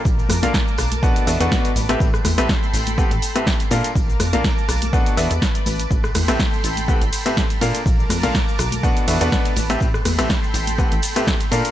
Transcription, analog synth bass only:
X:1
M:4/4
L:1/16
Q:"Swing 16ths" 1/4=123
K:Ador
V:1 name="Analog synth bass" clef=bass
_B,,,2 =F,, B,,, z2 =B,,,3 z E,, E,, z2 A,,,2 | A,,,2 E,, A,,, z2 A,,,3 A,,, z4 _B,, z | _B,,,2 =F,, B,,, z2 =B,,,3 z E,, E,, z2 A,,,2 | A,,,2 E,, A,,, z2 A,,,3 A,,, z4 _B,, z |
_B,,,2 =F,, B,,, z2 =B,,,3 z E,, E,, z2 A,,,2 | A,,,2 E,, A,,, z2 A,,,3 A,,, z4 _B,, z |]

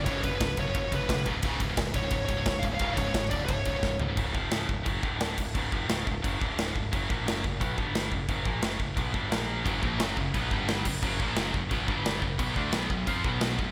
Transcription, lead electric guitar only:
X:1
M:4/4
L:1/8
Q:1/4=175
K:none
V:1 name="Lead electric guitar"
^c B2 c2 B2 z | z3 ^c2 c2 ^e | ^e ^c2 d c3 z | z8 |
z8 | z8 | z8 | z8 |
z8 | z8 |]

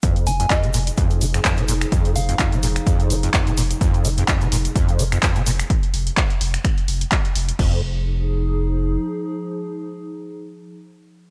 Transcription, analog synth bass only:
X:1
M:4/4
L:1/8
Q:"Swing 16ths" 1/4=127
K:Fm
V:1 name="Analog synth bass" clef=bass
z F,,, z F,,, z F,,, z F,,, | z F,,, z F,,, z F,,, z F,,, | z F,,, z F,,, z F,,, z F,,, | z F,,, z F,,, z F,,, z F,,, |
F,,,6 z2 | z8 |]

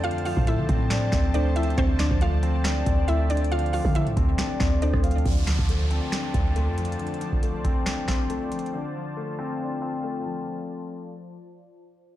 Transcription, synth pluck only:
X:1
M:4/4
L:1/8
Q:1/4=138
K:Dm
V:1 name="Synth pluck"
[Ff] [Ff] [Ee]4 [Dd] [Ee] | [Cc] [Dd] [Ff]4 [Ee] [Dd] | [Ff] [Ff] [Ee]4 [Dd]2 | z8 |
z8 | z8 | z8 |]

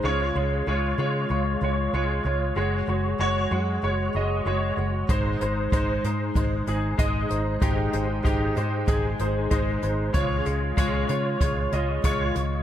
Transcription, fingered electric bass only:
X:1
M:4/4
L:1/8
Q:1/4=95
K:Dblyd
V:1 name="Fingered electric bass" clef=bass
D,, D,, D,, D, D,, D,, D,, D,, | _G,,, G,,, G,,, _G,, G,,, G,,, G,,, G,,, | A,,, A,,, A,,, A,, A,,, A,,, A,,, A,,, | A,,, A,,, A,,, A,, A,,, A,,, A,,, A,,, |
D,, D,, D,, D, D,, D,, D,, D,, |]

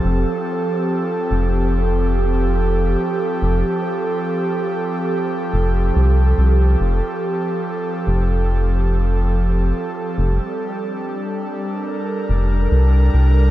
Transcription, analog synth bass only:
X:1
M:4/4
L:1/8
Q:"Swing 16ths" 1/4=71
K:F
V:1 name="Analog synth bass" clef=bass
F,,, z2 F,,,4 z | F,,, z4 F,,, C,, C,, | F,,, z2 F,,,4 z | F,,, z4 F,,, C,, C,, |]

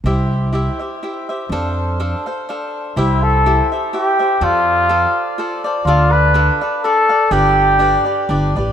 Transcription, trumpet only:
X:1
M:3/4
L:1/8
Q:"Swing" 1/4=124
K:C
V:1 name="Trumpet"
z6 | z6 | E A2 z G2 | F4 z2 |
F B2 z A2 | G4 z2 |]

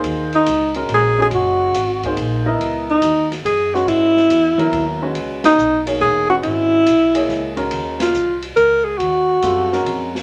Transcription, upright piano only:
X:1
M:3/4
L:1/8
Q:"Swing" 1/4=141
K:C#dor
V:1 name="Upright piano"
[A,DG^B]2 z [G,CFA]2 [G,CFG]- | [G,CFG]2 z [A,DG^B]2 [=B,EAd]- | [B,EAd]2 z3 [G,CFB]- | [G,CFB]2 z [F,B,EA]2 [G,CFB]- |
[G,CFB]2 z [A,DGc]2 [G,CFB]- | [G,CFB]2 z [A,Gcd]2 [G,CFA]- | [G,CFA]2 z4 | z2 [=G,^B,^E=A] [^G,CF^A]2 z |]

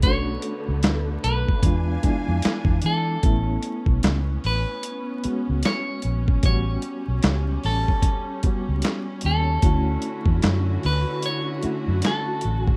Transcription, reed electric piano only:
X:1
M:4/4
L:1/8
Q:"Swing 16ths" 1/4=75
K:A
V:1 name="Reed electric piano"
[A,CDF]3 z [G,B,D=F] [G,B,DE]2 z | [A,B,CE]3 z2 [G,B,CF]2 z | [=G,B,CF]3 z2 [G,B,CF]2 z | [A,CEF]3 z2 [A,CEF]2 z |]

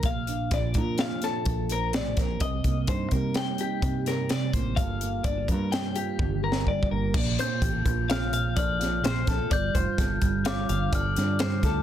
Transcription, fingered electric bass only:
X:1
M:5/4
L:1/16
Q:1/4=127
K:Bb
V:1 name="Fingered electric bass" clef=bass
B,,,4 B,,,2 B,,6 B,,,6 B,,,2 | C,,2 C,,2 G,,2 C,6 C,6 A,,,2 | G,,,4 G,,,2 G,,6 G,,,6 G,,,2 | B,,,2 z2 A,,,2 B,,,6 B,,,6 B,,, z |
G,,,2 F,,, z G,,,2 G,,,4 G,,,2 G,,,2 G,,4 D,,2 |]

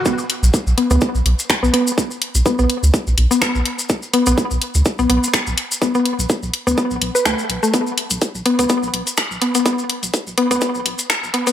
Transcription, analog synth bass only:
X:1
M:4/4
L:1/16
Q:"Swing 16ths" 1/4=125
K:Bm
V:1 name="Analog synth bass" clef=bass
z3 B,,, z B,,, z D,, z B,,, B,,, z2 B,,, z2 | z3 B,,, z B,,, z D,, z B,,, B,,, z2 B,,, z2 | z3 B,,, z B,,, z D,, z B,,, B,,, z2 B,,, z2 | z3 B,,, z B,,, z D,, z B,,, B,,, z D,, z B,,, z |
z3 B,,, z B,,, z D,, z B,,, B,,, z2 B,,, z2 | z3 B,,, z B,,, z D,, z B,,, B,,, z2 B,,, z2 |]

